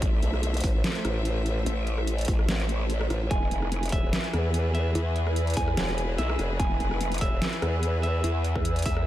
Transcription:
Already playing: A3 A4 C5 E5
0.02 A1, kick, closed hi-hat
0.23 B1, closed hi-hat
0.34 cross-stick
0.43 closed hi-hat
0.54 closed hi-hat
0.57 closed hi-hat
0.60 A1, kick, closed hi-hat, open hi-hat
0.75 A1
0.84 snare, closed hi-hat
0.95 closed hi-hat
1.05 A1, cross-stick, closed hi-hat
1.25 closed hi-hat
1.46 closed hi-hat
1.66 A1, closed hi-hat
1.87 closed hi-hat
1.98 cross-stick
2.07 closed hi-hat
2.18 closed hi-hat
2.21 closed hi-hat
2.25 A1, kick, closed hi-hat, open hi-hat
2.39 cross-stick
2.49 A1, snare, closed hi-hat
2.60 closed hi-hat
2.69 closed hi-hat
2.90 closed hi-hat
3.01 cross-stick
3.10 A1, cross-stick, closed hi-hat
3.31 E1 E3 E4 G#4 B4 G#5, kick, closed hi-hat
3.51 F1, closed hi-hat
3.62 cross-stick
3.72 closed hi-hat
3.83 closed hi-hat
3.86 closed hi-hat
3.89 E1 E5, kick, closed hi-hat, open hi-hat
4.03 E1
4.13 snare, closed hi-hat
4.24 closed hi-hat
4.33 E2, cross-stick, closed hi-hat
4.54 closed hi-hat
4.75 E5, closed hi-hat
4.95 E2, closed hi-hat
5.16 closed hi-hat
5.27 cross-stick
5.36 closed hi-hat
5.47 closed hi-hat
5.50 closed hi-hat
5.54 E2 G#5, kick, closed hi-hat, open hi-hat
5.68 cross-stick
5.77 E1, snare, closed hi-hat
5.88 closed hi-hat
5.98 closed hi-hat
6.18 B1 E5, closed hi-hat
6.29 cross-stick
6.39 F1, cross-stick, closed hi-hat
6.60 E1 G#5, kick, closed hi-hat
6.80 F1, closed hi-hat
6.91 cross-stick
7.01 closed hi-hat
7.12 closed hi-hat
7.14 closed hi-hat
7.18 E1 E5, kick, closed hi-hat, open hi-hat
7.32 E1
7.42 snare, closed hi-hat
7.53 closed hi-hat
7.62 E2, cross-stick, closed hi-hat
7.83 closed hi-hat
8.03 E5, closed hi-hat
8.24 E2, closed hi-hat
8.44 closed hi-hat
8.56 kick, cross-stick
8.65 closed hi-hat
8.76 closed hi-hat
8.79 closed hi-hat
8.82 E2 E5, kick, closed hi-hat, open hi-hat
8.97 cross-stick

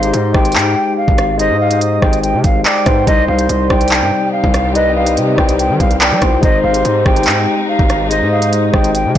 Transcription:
Already playing: G#1 D#4 C5 F5
0.00 G#3 D#4, closed hi-hat
0.05 G4
0.14 G#2, closed hi-hat
0.32 G#1 G#3 D#4 G4 G5, kick, cross-stick
0.45 closed hi-hat
0.52 G#2, clap, closed hi-hat
0.59 closed hi-hat
0.97 F5
1.08 G#1, kick
1.18 cross-stick, closed hi-hat
1.38 G#3 D#4 C5 D#5, closed hi-hat
1.50 G#2
1.61 F5
1.69 G#3 D#4 C5, closed hi-hat
1.81 closed hi-hat
2.01 G#1 G#3 D#4 C5 G5, kick, cross-stick
2.13 closed hi-hat
2.23 G5, closed hi-hat
2.34 C3
2.44 G#1 F5, kick, closed hi-hat
2.65 D5 G5, clap
2.85 G#2 G#3 D#4 B4 C5, kick, cross-stick, closed hi-hat
3.05 C2 C3 G3 C4 D#4 G4 C5 D#5, kick, closed hi-hat
3.28 C2 F5
3.37 G3 D#4 C5, closed hi-hat
3.49 C2, closed hi-hat
3.69 C2 G3 D#4 D5 G5, kick, cross-stick
3.81 closed hi-hat
3.88 clap, closed hi-hat
3.95 closed hi-hat
4.02 G2
4.32 F5
4.44 C2, kick
4.54 cross-stick, closed hi-hat
4.73 G3 D#4 B4 D#5, closed hi-hat
4.96 F5
5.05 G3 D#4 C5, closed hi-hat
5.17 C3, closed hi-hat
5.36 C2 G3 D#4 C5 G5, kick, cross-stick
5.49 closed hi-hat
5.59 G5, closed hi-hat
5.69 D#3
5.80 C2 F5, kick, closed hi-hat
5.91 closed hi-hat
6.01 D5 G5, clap
6.11 G3
6.20 C2 G3 D#4 F4 C5, kick, cross-stick, closed hi-hat
6.41 G#1 G#3 D#4 C5 D#5, kick, closed hi-hat
6.63 G#1 F5
6.73 G#3 D#4 G4, closed hi-hat
6.85 G#2, closed hi-hat
7.04 G#1 G#3 D#4 G4 G5, kick, cross-stick
7.16 closed hi-hat
7.23 G#2, clap, closed hi-hat
7.30 closed hi-hat
7.69 F5
7.79 G#1, kick
7.90 cross-stick, closed hi-hat
8.09 G#3 D#4 C5 D#5, closed hi-hat
8.21 G#2
8.32 F5
8.40 G#3 D#4 C5, closed hi-hat
8.53 closed hi-hat
8.72 G#1 G#3 D#4 C5 G5, kick, cross-stick
8.84 closed hi-hat
8.94 G5, closed hi-hat
9.05 C3

